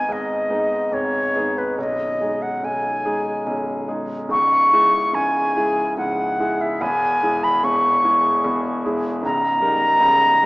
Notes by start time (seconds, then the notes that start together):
Already playing: G#1 G#2 G#3 B3 D#4 G#5
0.09 G#1 G#2 D#5
0.50 G#3 B3 D#4
0.91 G#1 G#2 C#5
1.35 G#3 B3 D#4
1.58 B4
1.78 B0 B1 D#5
2.21 G#3 D#4 G#4
2.42 F#5
2.63 B0 B1 G#5
3.05 G#3 D#4 G#4
3.46 B0 B1
3.88 G#3 D#4 G#4
4.29 C#1 C#2 C#6
4.72 G#3 E4 G#4
5.13 C#1 C#2 G#5
5.56 G#3 E4 G#4
5.97 C#1 C#2 F#5
6.40 G#3 E4 G#4
6.61 E5
6.81 E1 E2 G#5
7.23 G#3 E4 G#4
7.44 B5
7.63 E1 E2 C#6
8.04 G#3 E4 G#4
8.44 E1 E2
8.85 G#3 E4 G#4
9.23 C#1 C#2 A#5
9.61 G3 D#4 A#4
10.00 C#1 C#2